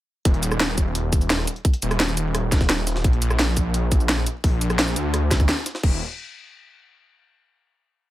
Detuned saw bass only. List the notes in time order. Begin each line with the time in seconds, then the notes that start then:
0.25 D#1
1.13 D#1
1.82 D#1
2.70 D#1
3.04 A#1
3.92 A#1
4.44 A#1
4.96 D2
5.83 D#1